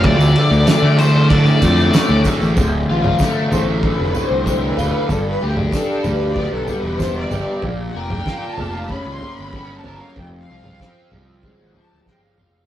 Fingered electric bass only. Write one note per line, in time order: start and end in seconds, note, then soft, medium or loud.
0.04 0.18 D2 loud
0.19 0.33 D2 medium
0.51 0.65 D2 medium
0.82 1.49 D3 medium
1.62 1.89 F2 loud
2.09 2.23 D2 loud
2.41 2.55 A1 medium
2.56 2.83 D1 loud
2.90 3.16 A1 medium
3.52 3.92 A1 medium
3.99 4.12 F1 medium
4.31 4.71 C2 medium
4.78 4.91 D1 medium
5.09 5.36 G1 loud
5.43 5.69 D2 medium
6.05 6.45 D2 medium
6.52 6.65 B1 medium
6.83 7.23 E1 medium
7.32 7.45 G1 medium
7.62 7.89 A#1 loud
7.95 8.21 F1 medium
8.59 8.99 F1 medium
9.05 9.19 C#2 medium
9.38 9.78 G1 medium
9.86 9.99 G1 medium
10.16 10.43 F1 medium
10.50 10.76 C2 medium
11.13 11.53 C2 medium
11.61 11.74 G#1 medium
11.93 12.05 D1 medium
12.07 12.35 G1 medium
12.40 12.66 F1 medium